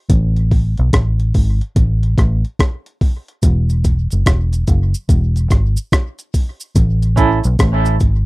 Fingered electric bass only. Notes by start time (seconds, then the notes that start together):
0.10 A1
0.79 B1
0.94 A1
1.35 G#1
1.77 A1
2.18 A1
3.44 E1
4.13 F#1
4.27 E1
4.69 F#1
5.10 E1
5.51 G#1
6.76 A1
7.45 B1
7.60 A1
8.02 G#1